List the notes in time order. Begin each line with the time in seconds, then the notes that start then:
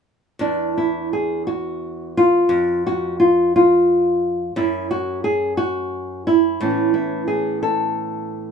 0.39 E2 D4
0.78 E4
1.13 G#4
1.47 F#4
2.17 F4
2.49 F2
2.87 F#4
3.20 F4
3.56 F4
4.56 F#2 E4
4.91 F#4
5.24 G#4
5.57 F#4
6.27 E4
6.61 A2 E3 B3 C#4
6.94 E4
7.28 G#4
7.63 A4